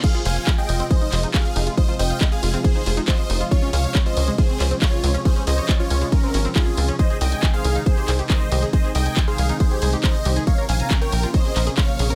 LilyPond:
<<
  \new Staff \with { instrumentName = "Supersaw synth" } { \time 4/4 \key f \minor \tempo 4 = 138 <aes' f''>8 <f'' aes''>8 r16 <ees'' g''>8 r16 <c'' ees''>8. r16 <aes' f''>8. r16 | <c'' ees''>8 <ees'' g''>8 r16 <aes' f''>8 r16 <aes' c''>8. r16 <c'' ees''>8. r16 | <f' des''>8 <des'' f''>8 r16 <c'' ees''>8 r16 <aes' c''>8. r16 <f' des''>8. r16 | <aes' c''>8 <c'' ees''>8 r16 <f' des''>8 r16 <des' bes'>8. r16 <f' aes'>8. r16 |
<c'' ees''>8 <ees'' g''>8 r16 <aes' f''>8 r16 <aes' c''>8. r16 <c'' ees''>8. r16 | <c'' ees''>8 <ees'' g''>8 r16 <aes' f''>8 r16 <aes' c''>8. r16 <c'' ees''>8. r16 | <des'' f''>8 <f'' aes''>8 r16 <bes' g''>8 r16 <c'' ees''>8. r16 <des'' f''>8. r16 | }
  \new Staff \with { instrumentName = "Synth arpeggio sound" } { \time 4/4 \key f \minor f'16 f'16 c''16 f''16 f''16 aes'16 f'16 c'16 aes'16 ees'16 f'16 ees'16 g'16 r16 ees'16 f'16 | f'16 f'16 c''16 f''16 f''16 aes'16 f'16 c'16 aes'16 ees'16 f'16 ees'16 g'16 r16 ees'16 f'16 | des'16 des'16 aes'16 des''16 des''16 f'16 des'16 aes16 f'16 c'16 des'16 c'16 ees'16 r16 c'16 des'16 | des'16 des'16 aes'16 des''16 des''16 f'16 des'16 aes16 f'16 c'16 des'16 c'16 ees'16 r16 c'16 des'16 |
aes'16 aes'16 ees''16 aes''16 aes''16 c''16 aes'16 ees'16 c''16 g'16 aes'16 g'16 bes'16 r16 g'16 aes'16 | aes'16 aes'16 ees''16 aes''16 aes''16 c''16 aes'16 ees'16 c''16 g'16 aes'16 g'16 bes'16 r16 g'16 aes'16 | bes'16 bes'16 f''16 bes''16 bes''16 des''16 bes'16 f'16 des''16 aes'16 bes'16 aes'16 c''16 r16 aes'16 bes'16 | }
  \new Staff \with { instrumentName = "Analog synth bass" } { \clef bass \time 4/4 \key f \minor r8 f,,8 r8 f,,8 r8 f,,8 r8 f,,8 | r8 f,,8 r8 f,,8 r8 f,,8 r8 f,,8 | r8 des,8 r8 des,8 r8 des,8 r8 des,8 | r8 des,8 r8 des,8 r8 aes,,8 r8 des,8 |
r8 c,8 r8 c,8 r8 c,8 r8 c,8 | r8 c,8 r8 c,8 r8 c,8 r8 c,8 | r8 bes,,8 r8 bes,,8 r8 bes,,8 r8 bes,,8 | }
  \new DrumStaff \with { instrumentName = "Drums" } \drummode { \time 4/4 <cymc hh bd cymr>16 hh16 <hho cymr>16 hh16 <hc hh bd cymr>16 hh16 <hho cymr>16 hh16 <hh bd cymr>16 hh16 <hc hho cymr>16 hh16 <hc hh bd cymr>16 hh16 <hho cymr>16 hh16 | <hh bd cymr>16 hh16 <hho cymr>16 hh16 <hc hh bd cymr>16 hh16 <hho cymr>16 hh16 <hh bd cymr>16 hh16 <hho cymr>16 hh16 <hc hh bd cymr>16 hh16 <hho cymr>16 hh16 | <hh bd cymr>16 hh16 <hho cymr>16 hh16 <hc hh bd cymr>16 hh16 <hho cymr>16 hh16 <hh bd cymr>16 hh16 <hc hho cymr>16 hh16 <hc hh bd cymr>16 hh16 <hho cymr>16 hh16 | <hh bd cymr>16 hh16 <hho cymr>16 hh16 <hc hh bd cymr>16 hh16 <hho cymr>16 hh16 <hh bd cymr>16 hh16 <hho cymr>16 hh16 <hc hh bd cymr>16 hh16 <hho cymr>16 hh16 |
<hh bd cymr>16 hh16 <hho cymr>16 hh16 <hc hh bd cymr>16 hh16 <hho cymr>16 hh16 <hh bd cymr>16 hh16 <hc hho cymr>16 hh16 <hc hh bd cymr>16 hh16 <hho cymr>16 hh16 | <hh bd cymr>16 hh16 <hho cymr>16 hh16 <hc hh bd cymr>16 hh16 <hho cymr>16 hh16 <hh bd cymr>16 hh16 <hho cymr>16 hh16 <hc hh bd cymr>16 hh16 <hho cymr>16 hh16 | <hh bd cymr>16 hh16 <hho cymr>16 hh16 <hc hh bd cymr>16 hh16 <hho cymr>16 hh16 <hh bd cymr>16 hh16 <hc hho cymr>16 hh16 <hc hh bd cymr>16 hh16 <hho cymr>16 hh16 | }
>>